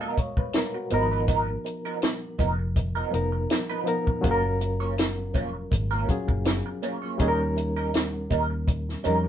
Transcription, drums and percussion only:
0.18 kick, closed hi-hat
0.37 kick
0.53 snare, closed hi-hat
0.90 closed hi-hat
1.28 kick, closed hi-hat
1.66 closed hi-hat
2.02 snare, closed hi-hat
2.39 kick, closed hi-hat
2.76 kick, closed hi-hat
3.14 closed hi-hat
3.50 snare, closed hi-hat
3.87 closed hi-hat
4.07 kick
4.24 kick, closed hi-hat
4.61 closed hi-hat
4.98 snare, closed hi-hat
5.34 kick, closed hi-hat
5.72 kick, closed hi-hat
6.09 kick, closed hi-hat
6.29 kick
6.45 snare, closed hi-hat
6.83 closed hi-hat
7.20 kick, closed hi-hat
7.57 closed hi-hat
7.94 snare, closed hi-hat
8.31 kick, closed hi-hat
8.68 kick, closed hi-hat
8.89 snare
9.05 closed hi-hat

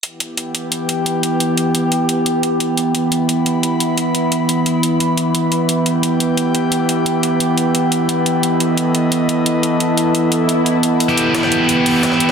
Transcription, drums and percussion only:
0.03 closed hi-hat
0.20 closed hi-hat
0.37 closed hi-hat
0.55 closed hi-hat
0.72 closed hi-hat
0.89 closed hi-hat
1.06 closed hi-hat
1.23 closed hi-hat
1.40 closed hi-hat
1.57 closed hi-hat
1.75 closed hi-hat
1.92 closed hi-hat
2.09 closed hi-hat
2.26 closed hi-hat
2.43 closed hi-hat
2.60 closed hi-hat
2.77 closed hi-hat
2.95 closed hi-hat
3.12 closed hi-hat
3.29 closed hi-hat
3.46 closed hi-hat
3.63 closed hi-hat
3.80 closed hi-hat
3.98 closed hi-hat
4.15 closed hi-hat
4.32 closed hi-hat
4.49 closed hi-hat
4.66 closed hi-hat
4.83 closed hi-hat
5.00 closed hi-hat
5.17 closed hi-hat
5.35 closed hi-hat
5.52 closed hi-hat
5.69 closed hi-hat
5.86 closed hi-hat
6.03 closed hi-hat
6.20 closed hi-hat
6.37 closed hi-hat
6.55 closed hi-hat
6.72 closed hi-hat
6.89 closed hi-hat
7.06 closed hi-hat
7.23 closed hi-hat
7.40 closed hi-hat
7.58 closed hi-hat
7.75 closed hi-hat
7.92 closed hi-hat
8.09 closed hi-hat
8.26 closed hi-hat
8.43 closed hi-hat
8.60 closed hi-hat
8.77 closed hi-hat
8.95 closed hi-hat
9.12 closed hi-hat
9.29 closed hi-hat
9.46 closed hi-hat
9.63 closed hi-hat
9.80 closed hi-hat
9.97 closed hi-hat
10.15 closed hi-hat
10.32 closed hi-hat
10.49 closed hi-hat
10.66 closed hi-hat
10.83 closed hi-hat
11.00 closed hi-hat
11.09 closed hi-hat
11.17 closed hi-hat
11.35 snare, closed hi-hat
11.43 snare
11.52 closed hi-hat
11.69 closed hi-hat
11.86 closed hi-hat, open hi-hat
12.03 snare, closed hi-hat
12.12 snare
12.20 closed hi-hat

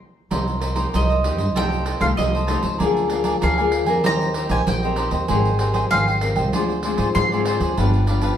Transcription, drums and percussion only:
0.31 pandeiro
0.48 pandeiro
0.62 pandeiro
0.76 pandeiro
0.94 pandeiro
1.10 pandeiro
1.24 pandeiro
1.38 pandeiro
1.56 pandeiro
1.72 pandeiro
1.86 pandeiro
2.01 pandeiro
2.18 pandeiro
2.35 pandeiro
2.48 pandeiro
2.63 pandeiro
2.80 pandeiro
2.97 pandeiro
3.10 pandeiro
3.24 pandeiro
3.42 pandeiro
3.58 pandeiro
3.72 pandeiro
3.86 pandeiro
4.04 pandeiro
4.21 pandeiro
4.34 pandeiro
4.49 pandeiro
4.67 pandeiro
4.83 pandeiro
4.96 pandeiro
5.11 pandeiro
5.28 pandeiro
5.45 pandeiro
5.59 pandeiro
5.74 pandeiro
5.91 pandeiro
6.08 pandeiro
6.21 pandeiro
6.36 pandeiro
6.53 pandeiro
6.70 pandeiro
6.83 pandeiro
6.98 pandeiro
7.15 pandeiro
7.32 pandeiro
7.46 pandeiro
7.60 pandeiro
7.78 pandeiro
7.93 pandeiro
8.07 pandeiro
8.21 pandeiro

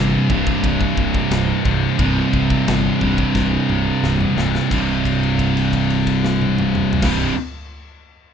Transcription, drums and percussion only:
0.30 kick
0.47 kick
0.64 kick, ride bell
0.81 kick
0.97 kick
1.14 kick
1.31 snare, ride bell
1.65 kick
1.99 kick, ride bell
2.33 kick
2.50 kick
2.68 snare, ride bell
3.01 kick
3.18 kick
3.35 kick, snare
3.70 mid tom
4.04 snare
4.21 mid tom
4.38 snare
4.55 snare
4.71 kick, crash
5.05 kick, crash
5.23 crash
5.39 kick, crash
5.57 crash
5.73 kick, crash
5.90 crash
6.07 kick, crash
6.24 snare
6.42 high tom
6.58 mid tom
6.75 mid tom
6.93 floor tom
7.02 kick, snare, crash

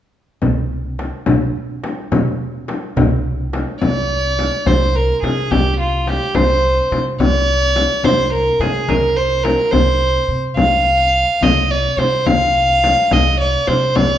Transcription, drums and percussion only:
0.42 frame drum, darbuka dum
0.99 darbuka tek, frame drum
1.26 frame drum, darbuka dum
1.56 darbuka ka
1.84 darbuka tek, frame drum
2.12 frame drum, darbuka dum
2.68 darbuka tek, frame drum
2.97 darbuka dum, frame drum
3.25 darbuka ka
3.53 darbuka tek, frame drum
3.82 frame drum
4.39 frame drum
4.66 frame drum
5.24 frame drum
5.52 frame drum
6.07 frame drum
6.35 frame drum
6.92 frame drum
7.20 frame drum
7.76 frame drum
8.04 frame drum
8.61 frame drum
8.88 frame drum
9.45 frame drum
9.73 frame drum
10.57 frame drum
11.42 frame drum
11.98 frame drum
12.26 frame drum
12.84 frame drum
13.11 frame drum
13.67 frame drum
13.96 frame drum

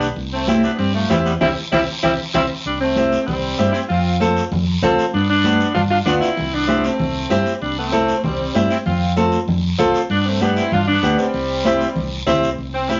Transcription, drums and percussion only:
0.01 short guiro
0.16 high conga, long guiro
0.48 high conga, short guiro
0.63 short guiro
0.79 long guiro
1.10 high conga, short guiro
1.26 short guiro
1.41 low conga, long guiro
1.72 low conga, long guiro
2.03 low conga, long guiro
2.34 low conga, long guiro
2.65 high conga, long guiro
2.96 high conga, short guiro
3.12 short guiro
3.28 high conga, low conga, long guiro
3.59 high conga, short guiro
3.74 short guiro
3.90 high conga, long guiro
4.21 high conga, short guiro
4.37 short guiro
4.52 high conga, low conga, long guiro
4.82 high conga, low conga, short guiro
4.99 short guiro
5.13 high conga, long guiro
5.44 high conga, short guiro
5.60 short guiro
5.75 high conga, low conga, long guiro
6.06 high conga, short guiro
6.22 short guiro
6.37 high conga, low conga, long guiro
6.68 high conga, short guiro
6.84 short guiro
7.00 high conga, low conga, long guiro
7.30 high conga, short guiro
7.46 short guiro
7.62 high conga, long guiro
7.93 high conga, short guiro
8.08 short guiro
8.24 high conga, low conga, long guiro
8.55 high conga, short guiro
8.70 short guiro
8.86 high conga, low conga, long guiro
9.17 high conga, short guiro
9.32 short guiro
9.48 high conga, low conga, long guiro
9.79 high conga, low conga, short guiro
9.94 short guiro
10.10 high conga, long guiro
10.41 high conga, short guiro
10.56 short guiro
10.72 high conga, low conga, long guiro
11.03 high conga, short guiro
11.18 short guiro
11.34 high conga, long guiro
11.65 high conga, short guiro
11.81 short guiro
11.96 high conga, low conga, long guiro
12.27 high conga, low conga, short guiro
12.43 short guiro
12.58 high conga, long guiro
12.89 high conga, short guiro

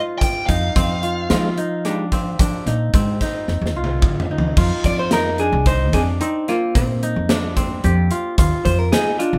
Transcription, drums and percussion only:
0.21 kick, closed hi-hat
0.49 kick, closed hi-hat
0.76 kick, closed hi-hat
1.03 closed hi-hat
1.30 snare, closed hi-hat
1.58 closed hi-hat
1.85 snare, closed hi-hat
2.12 kick, closed hi-hat
2.39 kick, closed hi-hat
2.67 snare, closed hi-hat
2.94 kick, closed hi-hat
3.21 kick, snare, closed hi-hat
3.48 snare
3.66 snare
3.84 high tom
4.02 kick, mid tom
4.20 mid tom
4.38 floor tom
4.57 kick, crash
4.84 kick, closed hi-hat
5.11 snare, closed hi-hat
5.38 closed hi-hat
5.66 kick, closed hi-hat
5.93 kick, snare, closed hi-hat
6.21 closed hi-hat
6.48 snare, closed hi-hat
6.75 kick, closed hi-hat
7.03 closed hi-hat
7.29 snare, closed hi-hat
7.57 kick, closed hi-hat
7.84 closed hi-hat
8.11 closed hi-hat
8.38 kick, closed hi-hat
8.65 kick, closed hi-hat
8.93 snare, closed hi-hat
9.20 closed hi-hat

